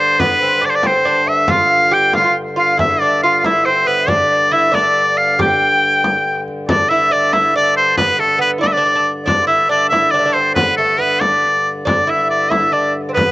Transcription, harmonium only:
0, 0, Header, 1, 2, 480
1, 0, Start_track
1, 0, Tempo, 431965
1, 213, Time_signature, 6, 3, 24, 8
1, 14798, End_track
2, 0, Start_track
2, 0, Title_t, "Harmonium"
2, 0, Program_c, 0, 20
2, 0, Note_on_c, 0, 43, 70
2, 0, Note_on_c, 0, 50, 69
2, 1641, Note_off_c, 0, 50, 0
2, 1642, Note_off_c, 0, 43, 0
2, 1658, Note_on_c, 0, 50, 73
2, 1659, Note_on_c, 0, 43, 78
2, 7433, Note_off_c, 0, 50, 0
2, 7439, Note_off_c, 0, 43, 0
2, 7449, Note_on_c, 0, 50, 69
2, 7456, Note_on_c, 0, 43, 66
2, 13153, Note_off_c, 0, 43, 0
2, 13155, Note_off_c, 0, 50, 0
2, 13170, Note_on_c, 0, 43, 72
2, 13172, Note_on_c, 0, 50, 69
2, 14798, Note_off_c, 0, 43, 0
2, 14798, Note_off_c, 0, 50, 0
2, 14798, End_track
0, 0, End_of_file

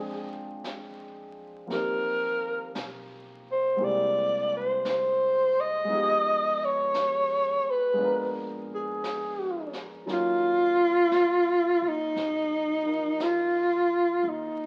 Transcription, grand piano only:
0, 0, Header, 1, 2, 480
1, 0, Start_track
1, 0, Tempo, 1054482
1, 774, Time_signature, 4, 2, 24, 8
1, 2210, Tempo, 1043478
1, 6722, End_track
2, 0, Start_track
2, 0, Title_t, "Grand piano"
2, 0, Program_c, 0, 0
2, 0, Control_c, 0, 64, 127
2, 0, Note_on_c, 0, 53, 49
2, 0, Note_on_c, 0, 56, 46
2, 0, Note_on_c, 0, 60, 44
2, 0, Note_on_c, 0, 62, 47
2, 0, Note_on_c, 0, 79, 50
2, 752, Note_off_c, 0, 53, 0
2, 758, Note_on_c, 0, 53, 39
2, 764, Note_on_c, 0, 58, 40
2, 766, Note_off_c, 0, 60, 0
2, 770, Note_off_c, 0, 56, 0
2, 773, Note_on_c, 0, 60, 42
2, 779, Note_on_c, 0, 63, 40
2, 780, Control_c, 0, 64, 0
2, 781, Note_on_c, 0, 67, 43
2, 782, Note_off_c, 0, 62, 0
2, 788, Note_off_c, 0, 79, 0
2, 847, Control_c, 0, 64, 127
2, 1712, Note_off_c, 0, 58, 0
2, 1713, Note_on_c, 0, 56, 42
2, 1718, Note_off_c, 0, 60, 0
2, 1719, Note_on_c, 0, 58, 40
2, 1724, Note_off_c, 0, 53, 0
2, 1725, Note_on_c, 0, 60, 40
2, 1729, Note_off_c, 0, 67, 0
2, 1731, Note_on_c, 0, 64, 40
2, 1734, Note_off_c, 0, 63, 0
2, 1736, Note_on_c, 0, 67, 46
2, 1737, Control_c, 0, 64, 0
2, 1806, Control_c, 0, 64, 127
2, 2658, Note_off_c, 0, 56, 0
2, 2665, Note_on_c, 0, 56, 46
2, 2678, Note_on_c, 0, 59, 43
2, 2683, Note_off_c, 0, 58, 0
2, 2687, Note_off_c, 0, 60, 0
2, 2688, Note_on_c, 0, 63, 44
2, 2690, Note_off_c, 0, 64, 0
2, 2692, Note_off_c, 0, 67, 0
2, 2696, Control_c, 0, 64, 0
2, 2703, Note_on_c, 0, 65, 41
2, 2712, Note_on_c, 0, 67, 50
2, 2768, Control_c, 0, 64, 127
2, 3619, Note_off_c, 0, 56, 0
2, 3626, Note_on_c, 0, 56, 51
2, 3632, Note_off_c, 0, 59, 0
2, 3639, Note_on_c, 0, 59, 43
2, 3649, Note_off_c, 0, 63, 0
2, 3651, Note_on_c, 0, 62, 45
2, 3655, Control_c, 0, 64, 0
2, 3656, Note_off_c, 0, 65, 0
2, 3661, Note_off_c, 0, 67, 0
2, 3664, Note_on_c, 0, 65, 46
2, 3678, Note_on_c, 0, 70, 61
2, 3745, Control_c, 0, 64, 127
2, 4595, Note_off_c, 0, 56, 0
2, 4601, Note_off_c, 0, 59, 0
2, 4604, Note_off_c, 0, 65, 0
2, 4604, Note_off_c, 0, 70, 0
2, 4604, Note_on_c, 0, 54, 42
2, 4607, Note_off_c, 0, 62, 0
2, 4607, Note_on_c, 0, 63, 36
2, 4608, Note_on_c, 0, 61, 43
2, 4611, Note_on_c, 0, 65, 38
2, 4611, Note_on_c, 0, 70, 47
2, 4612, Control_c, 0, 64, 0
2, 4699, Control_c, 0, 64, 127
2, 5871, Note_off_c, 0, 63, 0
2, 5878, Note_on_c, 0, 63, 36
2, 5879, Note_off_c, 0, 65, 0
2, 5886, Note_on_c, 0, 65, 34
2, 5887, Note_off_c, 0, 70, 0
2, 5894, Note_on_c, 0, 70, 43
2, 6521, Note_off_c, 0, 63, 0
2, 6525, Note_off_c, 0, 65, 0
2, 6526, Note_off_c, 0, 54, 0
2, 6528, Note_off_c, 0, 61, 0
2, 6529, Note_off_c, 0, 70, 0
2, 6722, End_track
0, 0, End_of_file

